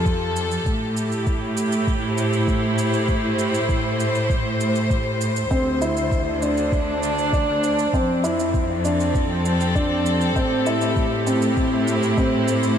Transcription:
Already playing: F2 F3 F4 G4 A4
0.06 kick, shaker
0.36 shaker
0.51 shaker
0.66 A2 A3, kick, shaker
0.95 E4, shaker
1.12 shaker
1.27 kick, shaker
1.57 shaker
1.72 shaker
1.87 kick, shaker
2.06 C5
2.18 shaker
2.33 shaker
2.48 kick, shaker
2.78 shaker
2.93 shaker
3.09 kick, shaker
3.39 shaker
3.54 shaker
3.69 kick, shaker
4.00 shaker
4.15 shaker
4.30 kick, shaker
4.60 shaker
4.76 shaker
4.90 kick, shaker
5.21 shaker
5.36 shaker
5.51 D2 D3 C4, kick, shaker
5.82 E4, shaker
5.97 shaker
6.12 kick, shaker
6.27 D4
6.42 D4, shaker
6.57 shaker
6.72 kick, shaker
7.03 shaker
7.18 shaker
7.33 D4, kick, shaker
7.63 shaker
7.79 shaker
7.93 F2 F3 C4, kick, shaker
8.09 C4
8.24 E4, shaker
8.39 shaker
8.54 kick, shaker
8.65 A4
8.85 D4, shaker
9.00 G4, shaker
9.15 kick, shaker
9.45 shaker
9.61 shaker
9.75 D4, kick, shaker
10.06 shaker
10.21 shaker
10.36 A2 A3 C4, kick, shaker
10.56 E4
10.66 E4, shaker
10.81 shaker
10.96 kick, shaker
11.27 C4, shaker
11.33 C5
11.42 shaker
11.57 kick, shaker
11.88 shaker
12.03 shaker
12.18 C4, kick, shaker
12.48 shaker
12.63 shaker

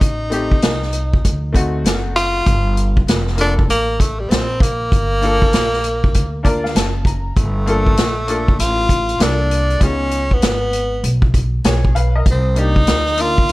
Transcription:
Already playing: D#4
0.01 A1, kick, closed hi-hat
0.30 A3 C4 D#4 G4, closed hi-hat
0.51 kick
0.62 C2, snare, closed hi-hat
0.82 snare
0.93 closed hi-hat
1.13 kick
1.25 D2, kick, closed hi-hat
1.53 A3 C4 D#4 F#4, kick, closed hi-hat
1.84 F#1, snare, closed hi-hat
2.16 F4, closed hi-hat
2.46 G1, kick, closed hi-hat
2.77 closed hi-hat
2.97 kick
3.07 F1, snare, closed hi-hat
3.27 snare
3.36 A#3 D4 F4 A4, closed hi-hat
3.41 D4
3.59 kick
3.69 A1 A#3, closed hi-hat
4.00 A3, kick, closed hi-hat
4.20 G3
4.30 A#1 C4, snare, closed hi-hat
4.60 A#3, kick, closed hi-hat
4.92 G1, kick, closed hi-hat
5.21 A#3 D4 F4 A4, closed hi-hat
5.42 kick
5.53 A#1, snare, closed hi-hat
5.73 snare
5.84 closed hi-hat
6.04 kick
6.14 D2, kick, closed hi-hat
6.43 A#3 D4 F4 A#4 D5, kick, closed hi-hat
6.64 F5, snare
6.75 F#1 A5, snare, closed hi-hat
7.05 A#5, kick, closed hi-hat
7.37 G1 A3, kick, closed hi-hat
7.66 A#3 D4 F4 A4, closed hi-hat
7.87 kick
7.97 A#1, snare, closed hi-hat
8.27 A#3 D4 F4 A4, closed hi-hat
8.48 kick
8.59 A1 F4, closed hi-hat
8.89 kick, closed hi-hat
9.09 closed hi-hat
9.18 C2 A#3 D4 F4 A4, snare, closed hi-hat
9.22 D4
9.51 closed hi-hat
9.70 closed hi-hat
9.80 C#2 B3 C#4 D#4 F4 G#4, kick, closed hi-hat
10.11 closed hi-hat
10.31 B3, kick
10.42 G#1, snare, closed hi-hat
10.73 closed hi-hat
11.03 B1, closed hi-hat
11.22 kick
11.34 kick, closed hi-hat
11.64 B1 G#4 C#5, snare, closed hi-hat
11.85 kick
11.95 B4 F5, closed hi-hat
12.15 A#4 D#5
12.26 C2, kick, closed hi-hat
12.30 C4
12.55 A#3 D4 D#4 G4, closed hi-hat
12.59 D#4
12.76 kick
12.87 D2, snare, closed hi-hat
13.06 snare
13.16 A#3 D4 D#4, closed hi-hat
13.20 F4 A#4
13.38 kick
13.49 D#2, closed hi-hat

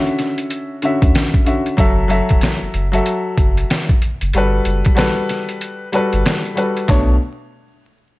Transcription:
Already playing: D3 C#4 F#4 E5
0.07 closed hi-hat
0.19 snare, closed hi-hat
0.38 closed hi-hat
0.50 closed hi-hat
0.82 D3 C#4 F#4 E5, closed hi-hat
1.02 D2, kick, closed hi-hat
1.15 snare, closed hi-hat
1.34 kick, closed hi-hat
1.45 D3 C#4 F#4 E5, closed hi-hat
1.66 closed hi-hat
1.77 F#1 F#3 F#4 A4 E5, kick, closed hi-hat
2.08 F#3 F#4 A4 E5, closed hi-hat
2.29 E1, kick, closed hi-hat
2.41 snare, closed hi-hat
2.62 F#1
2.74 F#1, closed hi-hat
2.92 F#3 F#4 A4 E5, closed hi-hat
3.06 closed hi-hat
3.37 F#1, kick, closed hi-hat
3.57 closed hi-hat
3.70 snare, closed hi-hat
3.89 kick, closed hi-hat
4.02 closed hi-hat
4.21 F#1, closed hi-hat
4.33 G1 G3 F#4 A4, closed hi-hat
4.38 B4
4.65 F#1, closed hi-hat
4.85 kick, closed hi-hat
4.95 G3 F#4 A4 B4, snare, closed hi-hat
5.29 snare, closed hi-hat
5.49 closed hi-hat
5.61 closed hi-hat
5.92 G3 F#4 A4 B4, closed hi-hat
6.13 G1, closed hi-hat
6.26 snare, closed hi-hat
6.45 closed hi-hat
6.55 G3 F#4 A4 B4, closed hi-hat
6.77 closed hi-hat
6.88 B1 B2 A3 D4 C#5, kick, clap

